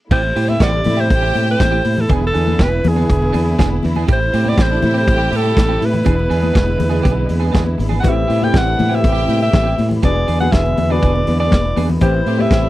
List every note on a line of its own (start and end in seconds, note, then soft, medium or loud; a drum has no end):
0.11 0.31 A1 loud
0.11 2.08 C3 medium
0.11 2.08 G3 medium
0.11 2.08 A3 medium
0.11 0.28 C4 medium
0.11 11.97 E4 medium
0.11 0.23 E4 medium
0.11 0.22 G4 medium
0.11 0.50 C5 loud
0.11 kick loud
0.11 crash loud
0.11 low conga medium
0.23 muted clean electric guitar stroke medium
0.23 muted conga soft
0.36 0.56 A2 loud
0.36 0.47 C4 medium
0.36 0.46 C4 medium
0.36 0.47 E4 medium
0.36 0.46 G4 medium
0.36 0.46 C5 medium
0.36 open hi-hat medium
0.48 0.58 B3 medium
0.48 0.58 C4 medium
0.48 0.59 E4 medium
0.48 0.59 G4 medium
0.48 0.58 B4 medium
0.48 0.65 E5 loud
0.48 high conga medium
0.59 0.80 A1 loud
0.59 0.70 C4 medium
0.59 0.80 C4 medium
0.59 0.71 E4 medium
0.59 0.70 G4 loud
0.59 0.70 C5 medium
0.59 kick loud
0.59 snare loud
0.59 closed hi-hat medium
0.63 1.02 D5 loud
0.71 0.83 D4 medium
0.71 0.83 D5 medium
0.71 muted clean electric guitar stroke soft
0.71 muted conga soft
0.84 1.12 A2 loud
0.84 1.05 E4 medium
0.84 1.05 E5 medium
0.84 muted clean electric guitar stroke soft
0.84 open hi-hat medium
0.84 high conga medium
0.84 low conga loud
0.97 1.08 C4 medium
0.97 1.08 E4 medium
0.97 1.09 G4 medium
0.97 1.49 C5 loud
1.09 1.30 A1 loud
1.09 1.81 G4 loud
1.09 1.80 G5 loud
1.09 muted clean electric guitar stroke soft
1.09 kick loud
1.09 closed hi-hat medium
1.09 muted conga soft
1.23 1.32 C4 medium
1.23 1.33 E4 medium
1.23 1.33 G4 medium
1.34 1.55 A2 medium
1.34 1.48 C4 medium
1.34 1.46 E4 medium
1.34 1.45 G4 medium
1.34 open hi-hat medium
1.34 high conga medium
1.46 muted clean electric guitar stroke medium
1.51 2.02 C5 loud
1.59 1.80 A1 loud
1.59 muted clean electric guitar stroke medium
1.59 kick loud
1.59 snare loud
1.59 closed hi-hat medium
1.59 muted conga soft
1.59 high conga medium
1.71 1.82 C4 medium
1.71 1.83 E4 medium
1.71 1.83 G4 medium
1.71 muted conga soft
1.83 2.05 A2 medium
1.83 muted clean electric guitar stroke soft
1.83 open hi-hat medium
1.83 high conga medium
1.98 2.15 A4 loud
1.98 muted clean electric guitar stroke soft
1.98 low conga medium
2.09 2.30 E1 loud
2.09 4.06 D3 medium
2.09 4.06 E3 medium
2.09 2.27 B3 medium
2.09 4.06 B3 medium
2.09 2.22 D4 medium
2.09 2.21 G#4 medium
2.09 kick loud
2.09 closed hi-hat medium
2.09 low conga medium
2.13 2.24 G#4 medium
2.22 muted clean electric guitar stroke soft
2.27 2.64 A4 loud
2.33 2.55 E2 loud
2.33 2.46 B3 medium
2.33 2.46 D4 medium
2.33 2.44 G#4 medium
2.33 open hi-hat medium
2.45 2.58 B3 soft
2.45 2.59 D4 medium
2.45 2.59 G#4 medium
2.45 high conga medium
2.59 2.79 E1 loud
2.59 2.79 B3 medium
2.59 2.71 D4 medium
2.59 2.70 G#4 loud
2.59 2.90 B4 loud
2.59 kick loud
2.59 snare loud
2.59 closed hi-hat medium
2.71 muted clean electric guitar stroke soft
2.71 muted conga soft
2.84 3.04 E2 loud
2.84 muted clean electric guitar stroke soft
2.84 open hi-hat medium
2.84 high conga loud
2.84 low conga loud
2.88 3.85 G#4 medium
2.96 3.08 B3 medium
2.96 3.09 D4 medium
2.96 3.10 G#4 medium
3.09 3.29 E1 loud
3.09 muted clean electric guitar stroke soft
3.09 kick loud
3.09 closed hi-hat medium
3.22 muted clean electric guitar stroke soft
3.22 muted conga soft
3.33 3.54 E2 loud
3.33 3.50 B3 medium
3.33 3.45 D4 medium
3.33 3.45 G#4 loud
3.33 open hi-hat medium
3.33 high conga medium
3.46 muted clean electric guitar stroke medium
3.58 3.79 E1 medium
3.58 3.76 B3 loud
3.58 3.70 D4 loud
3.58 3.69 G#4 loud
3.58 kick loud
3.58 snare loud
3.58 closed hi-hat medium
3.58 muted conga soft
3.58 high conga medium
3.70 muted clean electric guitar stroke soft
3.83 4.04 E2 loud
3.83 muted clean electric guitar stroke soft
3.83 open hi-hat medium
3.83 high conga medium
3.96 4.06 B3 medium
3.96 4.07 D4 medium
3.96 4.08 G#4 medium
3.96 low conga medium
4.07 4.28 A1 loud
4.07 6.04 C3 medium
4.07 6.05 G3 medium
4.07 4.25 A3 medium
4.07 6.05 A3 medium
4.07 4.20 C4 medium
4.07 4.20 G4 medium
4.07 kick loud
4.07 closed hi-hat medium
4.07 low conga medium
4.13 4.50 C5 loud
4.21 muted clean electric guitar stroke soft
4.31 4.53 A2 loud
4.31 4.46 A3 medium
4.31 4.42 C4 medium
4.31 4.45 C4 medium
4.31 4.43 G4 medium
4.31 4.42 C5 medium
4.31 open hi-hat medium
4.45 4.57 A3 medium
4.45 4.56 B3 medium
4.45 4.57 C4 medium
4.45 4.58 G4 medium
4.45 4.55 B4 medium
4.45 high conga loud
4.49 4.64 D5 loud
4.57 4.77 A1 loud
4.57 4.75 A3 medium
4.57 4.67 C4 medium
4.57 4.70 C4 medium
4.57 4.69 G4 medium
4.57 4.67 C5 loud
4.57 kick loud
4.57 snare loud
4.57 closed hi-hat medium
4.62 4.97 C5 loud
4.70 4.80 D4 medium
4.70 4.80 D5 medium
4.70 muted clean electric guitar stroke medium
4.70 muted conga soft
4.82 5.09 A2 loud
4.82 5.02 E4 medium
4.82 5.02 E5 medium
4.82 muted clean electric guitar stroke medium
4.82 open hi-hat medium
4.82 high conga loud
4.82 low conga loud
4.94 5.05 A3 medium
4.94 5.06 C4 medium
4.94 5.07 G4 medium
4.98 5.37 C5 loud
5.06 5.27 A1 loud
5.06 5.78 G4 loud
5.06 5.78 G5 loud
5.06 muted clean electric guitar stroke soft
5.06 kick loud
5.06 closed hi-hat medium
5.06 muted conga soft
5.18 5.29 A3 medium
5.18 5.30 C4 medium
5.18 5.31 G4 medium
5.31 5.52 A2 loud
5.31 5.45 A3 medium
5.31 5.44 C4 medium
5.31 5.43 G4 medium
5.31 open hi-hat medium
5.31 high conga medium
5.36 5.87 A4 loud
5.44 muted clean electric guitar stroke medium
5.56 5.77 A1 loud
5.56 muted clean electric guitar stroke medium
5.56 kick loud
5.56 snare loud
5.56 closed hi-hat medium
5.56 muted conga soft
5.56 high conga medium
5.69 5.79 A3 medium
5.69 5.80 C4 medium
5.69 5.80 G4 medium
5.69 muted conga soft
5.80 6.02 A2 loud
5.80 muted clean electric guitar stroke soft
5.80 open hi-hat medium
5.80 high conga medium
5.85 7.82 B4 medium
5.93 muted clean electric guitar stroke medium
5.93 low conga medium
6.05 6.26 E1 loud
6.05 8.02 D3 medium
6.05 8.02 G#3 medium
6.05 6.23 B3 medium
6.05 8.02 B3 medium
6.05 6.17 D4 medium
6.05 6.16 G#4 loud
6.05 kick loud
6.05 closed hi-hat medium
6.05 muted conga soft
6.05 low conga medium
6.17 muted clean electric guitar stroke soft
6.17 muted conga soft
6.29 6.51 E2 loud
6.29 6.41 B3 medium
6.29 6.41 D4 medium
6.29 6.40 G#4 medium
6.29 open hi-hat medium
6.41 6.52 B3 medium
6.41 6.52 D4 medium
6.41 6.53 G#4 medium
6.41 high conga medium
6.53 6.75 E1 loud
6.53 6.72 B3 medium
6.53 6.66 D4 medium
6.53 6.65 G#4 medium
6.53 kick loud
6.53 snare loud
6.53 closed hi-hat medium
6.67 muted clean electric guitar stroke soft
6.67 muted conga soft
6.78 7.00 E2 loud
6.78 muted clean electric guitar stroke soft
6.78 open hi-hat medium
6.78 high conga medium
6.78 low conga loud
6.90 7.01 B3 medium
6.90 7.02 D4 medium
6.90 7.02 G#4 medium
7.02 7.25 B1 loud
7.02 7.24 B3 medium
7.02 7.15 D4 medium
7.02 7.14 G#4 medium
7.02 kick loud
7.02 closed hi-hat medium
7.15 muted clean electric guitar stroke soft
7.27 7.50 E2 medium
7.27 muted clean electric guitar stroke soft
7.27 open hi-hat medium
7.27 high conga medium
7.40 7.50 B3 medium
7.40 7.51 D4 medium
7.40 7.52 G#4 medium
7.52 7.75 E2 loud
7.52 7.71 B3 medium
7.52 7.64 D4 loud
7.52 7.64 G#4 loud
7.52 kick loud
7.52 snare loud
7.52 closed hi-hat medium
7.52 muted conga soft
7.52 high conga medium
7.65 muted clean electric guitar stroke medium
7.65 muted conga soft
7.78 7.99 G#1 loud
7.78 muted clean electric guitar stroke soft
7.78 open hi-hat medium
7.78 high conga medium
7.89 8.02 B3 medium
7.89 8.02 D4 medium
7.89 8.03 G#4 medium
7.89 low conga medium
8.00 10.01 C3 medium
8.00 10.01 G3 medium
8.00 10.00 A3 medium
8.00 8.29 B3 medium
8.00 8.23 C4 medium
8.00 8.16 E4 medium
8.00 8.15 G4 medium
8.00 8.11 F#5 medium
8.00 closed hi-hat medium
8.00 muted conga soft
8.00 low conga medium
8.04 8.24 A1 loud
8.04 8.29 C4 medium
8.04 8.29 E4 medium
8.04 8.29 G4 medium
8.04 kick loud
8.09 8.45 E5 loud
8.16 muted clean electric guitar stroke soft
8.27 8.49 A2 medium
8.27 8.39 C4 medium
8.27 8.39 E4 medium
8.27 8.38 G4 medium
8.27 8.39 C5 medium
8.27 open hi-hat medium
8.39 8.51 B3 medium
8.39 8.73 B3 medium
8.39 8.50 C4 soft
8.39 8.74 C4 medium
8.39 8.52 E4 medium
8.39 8.74 E4 medium
8.39 8.52 G4 medium
8.39 8.75 G4 medium
8.39 8.51 B4 medium
8.39 high conga medium
8.44 8.59 G5 loud
8.52 8.74 A1 loud
8.52 8.70 C4 medium
8.52 8.63 C4 medium
8.52 8.65 E4 medium
8.52 8.64 G4 medium
8.52 8.63 C5 medium
8.52 kick loud
8.52 snare loud
8.52 closed hi-hat medium
8.52 muted conga soft
8.57 8.97 F#5 loud
8.65 8.76 D4 medium
8.65 8.76 D5 medium
8.65 muted clean electric guitar stroke soft
8.65 muted conga soft
8.77 9.06 A2 loud
8.77 8.98 E4 medium
8.77 8.98 E5 medium
8.77 muted clean electric guitar stroke soft
8.77 open hi-hat medium
8.77 high conga loud
8.77 low conga medium
8.89 9.56 B3 medium
8.89 9.00 C4 medium
8.89 9.56 C4 medium
8.89 9.00 E4 medium
8.89 9.57 E4 medium
8.89 9.01 G4 medium
8.89 9.57 G4 medium
8.95 9.42 E5 loud
9.02 9.24 A1 loud
9.02 9.74 G4 loud
9.02 9.74 G5 loud
9.02 muted clean electric guitar stroke soft
9.02 kick loud
9.02 closed hi-hat medium
9.06 muted conga soft
9.12 9.24 C4 medium
9.12 9.24 E4 medium
9.12 9.25 G4 medium
9.25 9.48 A2 medium
9.25 9.40 C4 medium
9.25 9.38 E4 medium
9.25 9.38 G4 medium
9.25 open hi-hat medium
9.30 high conga medium
9.39 9.88 E5 loud
9.39 muted clean electric guitar stroke soft
9.51 9.73 A1 loud
9.51 muted clean electric guitar stroke soft
9.51 kick loud
9.51 snare loud
9.51 closed hi-hat medium
9.51 high conga medium
9.64 9.75 C4 medium
9.64 9.75 E4 medium
9.64 9.75 G4 medium
9.64 muted conga soft
9.76 9.98 A2 medium
9.76 muted clean electric guitar stroke soft
9.76 open hi-hat medium
9.76 high conga medium
9.89 muted clean electric guitar stroke medium
9.89 low conga medium
10.02 10.23 E1 loud
10.02 11.99 D3 medium
10.02 11.99 G#3 medium
10.02 10.20 B3 medium
10.02 11.99 B3 medium
10.02 10.28 B3 medium
10.02 10.15 D4 medium
10.02 10.28 D4 medium
10.02 10.28 F#4 medium
10.02 10.14 G#4 medium
10.02 10.29 G#4 medium
10.02 10.39 D5 loud
10.02 kick loud
10.02 closed hi-hat medium
10.02 muted conga soft
10.02 low conga medium
10.16 muted clean electric guitar stroke soft
10.16 muted conga soft
10.27 10.48 E2 medium
10.27 10.40 B3 medium
10.27 10.40 D4 medium
10.27 10.39 G#4 medium
10.27 open hi-hat medium
10.40 10.73 B3 medium
10.40 10.51 B3 medium
10.40 10.73 D4 medium
10.40 10.52 D4 medium
10.40 10.73 F#4 medium
10.40 10.52 G#4 medium
10.40 10.74 G#4 medium
10.40 10.54 F#5 medium
10.40 high conga medium
10.52 10.72 E1 loud
10.52 10.70 B3 medium
10.52 10.65 D4 medium
10.52 10.63 G#4 medium
10.52 10.93 E5 loud
10.52 kick loud
10.52 snare loud
10.52 closed hi-hat medium
10.52 muted conga soft
10.65 muted clean electric guitar stroke soft
10.65 muted conga soft
10.77 10.98 E2 loud
10.77 muted clean electric guitar stroke soft
10.77 open hi-hat medium
10.77 high conga medium
10.77 low conga medium
10.90 11.55 B3 medium
10.90 11.01 B3 medium
10.90 11.55 D4 medium
10.90 11.02 D4 medium
10.90 11.55 F#4 medium
10.90 11.02 G#4 medium
10.90 11.55 B4 medium
10.90 11.39 D5 loud
11.02 11.22 E1 loud
11.02 11.19 B3 medium
11.02 11.14 D4 medium
11.02 11.14 G#4 medium
11.02 kick loud
11.02 closed hi-hat medium
11.02 muted conga soft
11.15 muted clean electric guitar stroke medium
11.15 muted conga soft
11.27 11.47 E2 medium
11.27 muted clean electric guitar stroke soft
11.27 open hi-hat medium
11.27 high conga medium
11.40 11.51 B3 medium
11.40 11.51 D4 medium
11.40 11.52 G#4 medium
11.40 11.86 D5 loud
11.51 11.72 E1 medium
11.51 muted clean electric guitar stroke soft
11.51 kick loud
11.51 snare loud
11.51 closed hi-hat medium
11.51 muted conga soft
11.51 high conga medium
11.65 muted clean electric guitar stroke soft
11.76 11.97 E2 loud
11.76 11.94 B3 medium
11.76 11.90 D4 medium
11.76 11.89 G#4 medium
11.76 open hi-hat medium
11.76 high conga medium
11.89 muted clean electric guitar stroke soft
11.89 low conga medium
12.01 12.21 A1 loud
12.01 12.69 C3 medium
12.01 12.69 G3 medium
12.01 12.69 A3 medium
12.01 12.25 B3 medium
12.01 12.26 C4 medium
12.01 12.19 C4 medium
12.01 12.26 E4 medium
12.01 12.69 E4 medium
12.01 12.15 E4 medium
12.01 12.26 G4 medium
12.01 12.14 G4 medium
12.01 12.43 C5 medium
12.01 kick loud
12.01 closed hi-hat medium
12.01 muted conga soft
12.01 low conga loud
12.14 muted clean electric guitar stroke soft
12.14 muted conga soft
12.26 12.46 A2 loud
12.26 12.36 C4 medium
12.26 12.39 C4 medium
12.26 12.38 E4 medium
12.26 12.37 G4 medium
12.26 12.36 C5 medium
12.26 open hi-hat medium
12.36 12.69 B3 medium
12.36 12.49 B3 medium
12.36 12.69 C4 medium
12.36 12.48 C4 medium
12.36 12.69 E4 medium
12.36 12.49 E4 medium
12.36 12.69 G4 medium
12.36 12.50 G4 medium
12.36 12.49 B4 medium
12.36 high conga medium
12.41 12.69 E5 loud
12.50 12.69 A1 loud
12.50 12.68 C4 medium
12.50 12.61 C4 medium
12.50 12.62 E4 medium
12.50 12.62 G4 medium
12.50 12.62 C5 loud
12.50 kick loud
12.50 snare loud
12.50 closed hi-hat medium
12.63 12.69 D4 medium
12.63 12.69 D5 medium
12.63 muted clean electric guitar stroke soft
12.63 muted conga soft